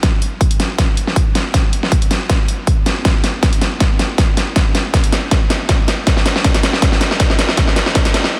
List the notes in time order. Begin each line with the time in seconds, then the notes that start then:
Already playing: B1
0.03 kick, snare, closed hi-hat
0.22 closed hi-hat
0.41 kick, closed hi-hat
0.51 closed hi-hat
0.60 snare, closed hi-hat
0.78 kick, snare, closed hi-hat
0.97 closed hi-hat
1.07 snare
1.16 kick, closed hi-hat
1.35 snare, closed hi-hat
1.54 kick, snare, closed hi-hat
1.73 closed hi-hat
1.83 snare
1.92 kick, closed hi-hat
2.02 closed hi-hat
2.11 snare, closed hi-hat
2.30 kick, snare, closed hi-hat
2.48 closed hi-hat
2.67 kick, closed hi-hat
2.86 E2, snare, closed hi-hat
3.05 kick, snare, closed hi-hat
3.24 snare, closed hi-hat
3.43 kick, snare, closed hi-hat
3.53 closed hi-hat
3.61 snare, closed hi-hat
3.80 kick, snare, closed hi-hat
3.99 snare, closed hi-hat
4.18 kick, snare, closed hi-hat
4.37 snare, closed hi-hat
4.56 kick, snare, closed hi-hat
4.75 snare, closed hi-hat
4.94 kick, snare, closed hi-hat
5.04 closed hi-hat
5.12 snare, closed hi-hat
5.31 kick, snare, closed hi-hat
5.50 snare, closed hi-hat
5.69 kick, snare, closed hi-hat
5.88 snare, closed hi-hat
6.07 D2, kick, snare, closed hi-hat
6.17 snare
6.26 snare, closed hi-hat
6.36 snare
6.44 kick, snare, closed hi-hat
6.54 snare, closed hi-hat
6.63 snare, closed hi-hat
6.73 snare
6.82 kick, snare, closed hi-hat
6.92 snare
7.01 snare, closed hi-hat
7.11 snare
7.20 kick, snare, closed hi-hat
7.30 snare
7.39 snare, closed hi-hat
7.49 snare
7.57 kick, snare, closed hi-hat
7.68 snare
7.76 snare, closed hi-hat
7.86 snare
7.95 kick, snare, closed hi-hat
8.05 snare, closed hi-hat
8.14 snare, closed hi-hat
8.24 snare